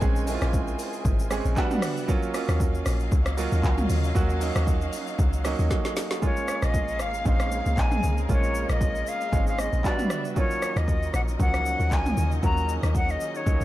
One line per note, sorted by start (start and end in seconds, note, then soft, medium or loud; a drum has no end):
0.00 0.38 A#1 loud
0.00 1.53 C#3 medium
0.00 0.27 G#3 loud
0.00 0.27 C4 medium
0.00 0.02 C#4 medium
0.00 0.23 C#4 medium
0.00 1.59 D#4 loud
0.00 0.35 F4 medium
0.00 0.23 G#4 loud
0.00 1.53 A#4 medium
0.00 1.55 C5 medium
0.00 1.53 G#5 medium
0.00 kick loud
0.00 shaker medium
0.16 shaker medium
0.27 1.11 G#3 medium
0.27 1.11 C4 medium
0.27 1.11 C#4 medium
0.27 0.35 E4 medium
0.27 open hi-hat medium
0.27 shaker loud
0.35 1.14 F4 loud
0.42 0.76 A#1 loud
0.42 cross-stick medium
0.42 shaker medium
0.53 kick loud
0.53 shaker medium
0.68 shaker medium
0.79 open hi-hat medium
0.79 shaker medium
0.93 shaker medium
1.05 1.41 G#1 loud
1.05 kick loud
1.05 shaker medium
1.19 shaker medium
1.30 1.57 G#3 medium
1.30 1.57 C4 medium
1.30 1.57 C#4 medium
1.30 1.57 G#4 loud
1.30 cross-stick medium
1.30 open hi-hat medium
1.30 shaker loud
1.45 1.56 A#1 medium
1.45 shaker medium
1.56 1.99 G3 loud
1.56 2.08 G3 medium
1.56 1.99 B3 medium
1.56 2.08 D4 medium
1.56 1.99 D4 medium
1.56 2.00 F#4 loud
1.56 2.08 E5 medium
1.56 2.08 F#5 medium
1.56 kick medium
1.56 clap medium
1.56 shaker medium
1.71 mid tom medium
1.71 shaker medium
1.82 cross-stick loud
1.82 open hi-hat medium
1.82 shaker loud
1.97 shaker medium
2.08 2.29 F#3 loud
2.08 6.19 F#3 medium
2.08 2.30 A#3 medium
2.08 6.18 C#4 medium
2.08 2.30 C#4 medium
2.08 2.30 F4 loud
2.08 6.19 D#5 medium
2.08 6.19 F5 medium
2.08 kick loud
2.08 shaker medium
2.23 shaker medium
2.34 3.17 F#3 medium
2.34 3.18 A#3 medium
2.34 3.18 C#4 medium
2.34 3.18 F4 medium
2.34 cross-stick medium
2.34 open hi-hat medium
2.34 shaker loud
2.49 2.82 D#2 medium
2.49 cross-stick medium
2.49 shaker medium
2.60 kick loud
2.60 shaker medium
2.75 shaker medium
2.86 3.10 A#1 medium
2.86 cross-stick medium
2.86 open hi-hat medium
2.86 shaker medium
3.00 shaker medium
3.12 3.48 C#2 loud
3.12 kick loud
3.12 shaker medium
3.26 cross-stick loud
3.26 shaker medium
3.37 4.01 F#3 loud
3.37 4.01 A#3 medium
3.37 4.01 C#4 medium
3.37 4.02 F4 loud
3.37 open hi-hat medium
3.37 shaker loud
3.52 3.63 D#2 loud
3.52 shaker medium
3.64 3.87 C#2 loud
3.64 kick medium
3.64 clap medium
3.64 shaker medium
3.78 mid tom medium
3.78 shaker medium
3.90 4.13 D#2 loud
3.90 open hi-hat medium
3.90 shaker loud
4.04 shaker medium
4.15 4.52 D#2 loud
4.15 4.36 F#3 loud
4.15 4.37 A#3 medium
4.15 4.37 C#4 medium
4.15 4.37 F#4 loud
4.15 kick loud
4.15 shaker medium
4.30 shaker medium
4.41 5.24 F#3 medium
4.41 5.25 A#3 medium
4.41 5.25 C#4 medium
4.41 5.25 D#4 medium
4.41 open hi-hat medium
4.41 shaker medium
4.56 4.89 D#2 medium
4.56 cross-stick loud
4.56 shaker medium
4.67 kick loud
4.67 shaker medium
4.82 shaker medium
4.93 open hi-hat medium
4.93 shaker medium
5.07 shaker medium
5.19 5.55 C#2 medium
5.19 kick loud
5.19 shaker medium
5.33 shaker medium
5.44 6.08 F#3 medium
5.44 6.08 A#3 medium
5.44 6.08 C#4 medium
5.44 6.08 D#4 loud
5.44 cross-stick medium
5.44 open hi-hat medium
5.44 shaker loud
5.59 5.70 D#2 medium
5.59 shaker medium
5.71 kick medium
5.71 snare medium
5.71 shaker medium
5.85 snare medium
5.85 shaker medium
5.97 snare loud
5.97 open hi-hat medium
5.97 shaker loud
6.11 snare loud
6.11 shaker medium
6.22 9.81 C#3 medium
6.22 7.05 G#3 medium
6.22 7.06 A#3 medium
6.22 9.81 A#3 medium
6.22 7.06 C#4 medium
6.22 7.06 F4 medium
6.22 9.81 G#4 medium
6.22 9.81 A#4 medium
6.22 6.66 C#5 medium
6.22 8.27 F5 medium
6.22 kick loud
6.22 shaker medium
6.37 shaker medium
6.48 cross-stick medium
6.48 shaker medium
6.62 7.02 A#1 medium
6.62 7.03 D#5 medium
6.62 cross-stick medium
6.62 shaker medium
6.74 kick medium
6.74 shaker medium
6.88 shaker medium
6.99 7.23 G#1 medium
6.99 7.27 F5 medium
6.99 cross-stick medium
6.99 shaker medium
7.14 shaker medium
7.25 7.62 A#1 loud
7.25 8.09 G#3 medium
7.25 8.09 C4 medium
7.25 8.09 C#4 medium
7.25 8.10 D#4 medium
7.25 7.81 F5 loud
7.25 kick loud
7.25 shaker medium
7.40 cross-stick loud
7.40 shaker medium
7.52 shaker loud
7.66 7.77 C#2 medium
7.66 shaker medium
7.77 8.01 A#1 loud
7.77 8.19 G#5 loud
7.77 kick medium
7.77 clap medium
7.77 shaker medium
7.92 mid tom medium
7.92 shaker medium
8.03 8.27 C#2 loud
8.03 shaker medium
8.18 shaker medium
8.29 8.65 A#1 loud
8.29 9.12 G#3 medium
8.29 9.13 A#3 medium
8.29 9.13 C#4 medium
8.29 9.13 F4 medium
8.29 8.67 C#5 medium
8.29 9.83 D#5 medium
8.29 kick loud
8.29 shaker medium
8.43 shaker medium
8.55 shaker medium
8.69 9.03 A#1 loud
8.69 9.10 D#5 medium
8.69 cross-stick medium
8.69 shaker medium
8.81 kick medium
8.81 shaker medium
8.95 shaker medium
9.07 9.48 F5 loud
9.07 shaker medium
9.21 shaker medium
9.32 9.69 G#1 loud
9.32 9.84 G#3 medium
9.32 9.85 C4 medium
9.32 9.85 C#4 medium
9.32 9.85 D#4 medium
9.32 kick loud
9.32 shaker medium
9.47 9.61 F5 medium
9.47 shaker medium
9.59 9.87 D#5 medium
9.59 cross-stick medium
9.59 shaker loud
9.73 9.83 A#1 medium
9.73 shaker medium
9.84 10.27 G3 medium
9.84 10.36 G3 medium
9.84 10.27 B3 medium
9.84 10.36 D4 medium
9.84 10.27 D4 medium
9.84 10.36 F#4 medium
9.84 10.27 F#4 medium
9.84 10.36 B4 medium
9.84 10.25 D5 medium
9.84 10.36 E5 medium
9.84 kick medium
9.84 clap medium
9.84 shaker medium
9.99 mid tom medium
9.99 shaker medium
10.10 cross-stick medium
10.10 shaker loud
10.25 shaker medium
10.36 13.64 D#3 medium
10.36 11.19 F#3 medium
10.36 11.19 A#3 medium
10.36 13.64 C#4 medium
10.36 11.20 C#4 medium
10.36 13.64 D#4 medium
10.36 11.20 F4 medium
10.36 12.41 A#4 medium
10.36 10.79 C#5 loud
10.36 13.64 D#5 medium
10.36 kick loud
10.36 shaker medium
10.51 shaker medium
10.62 cross-stick medium
10.62 shaker medium
10.76 11.10 D#2 loud
10.76 11.15 D#5 loud
10.76 cross-stick medium
10.76 shaker medium
10.88 kick loud
10.88 shaker medium
11.03 shaker medium
11.14 11.37 A#1 medium
11.14 11.21 F#5 loud
11.14 cross-stick medium
11.14 shaker medium
11.28 shaker medium
11.39 11.76 C#2 loud
11.39 12.23 F3 medium
11.39 12.23 F#3 medium
11.39 12.23 A#3 medium
11.39 12.23 C#4 medium
11.39 11.94 F#5 loud
11.39 kick loud
11.39 shaker medium
11.54 cross-stick medium
11.54 shaker medium
11.66 shaker medium
11.80 11.93 D#2 medium
11.80 shaker medium
11.91 12.15 C#2 loud
11.91 12.32 G#5 loud
11.91 kick medium
11.91 clap medium
11.91 shaker medium
12.06 mid tom medium
12.06 shaker medium
12.17 12.41 D#2 loud
12.17 shaker loud
12.32 shaker medium
12.42 12.79 D#2 loud
12.42 13.26 F#3 medium
12.42 13.26 A#3 medium
12.42 13.27 C#4 medium
12.42 13.27 F#4 medium
12.42 13.64 G#4 medium
12.42 12.73 A#5 loud
12.42 kick loud
12.42 shaker medium
12.57 shaker medium
12.69 shaker medium
12.83 13.17 D#2 loud
12.83 cross-stick medium
12.83 shaker medium
12.95 13.12 F#5 loud
12.95 kick loud
12.95 shaker medium
13.09 13.38 D#5 medium
13.09 shaker medium
13.21 shaker medium
13.35 13.64 C#5 medium
13.35 shaker medium
13.46 13.59 C#2 medium
13.46 13.64 F#3 medium
13.46 13.64 A#3 medium
13.46 13.64 C#4 medium
13.46 13.64 D#4 medium
13.46 kick loud
13.46 shaker medium
13.61 13.64 D#2 medium
13.61 shaker medium